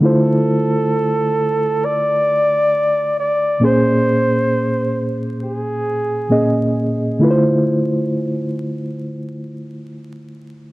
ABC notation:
X:1
M:4/4
L:1/8
Q:"Swing 16ths" 1/4=67
K:Dm
V:1 name="Flugelhorn"
A4 d3 d | c3 z _A3 z | z8 |]
V:2 name="Reed electric piano"
[D,A,EFc]8 | [B,,B,_D_Ac]6 [B,,B,DA_e]2 | [D,A,EF=Bc]8 |]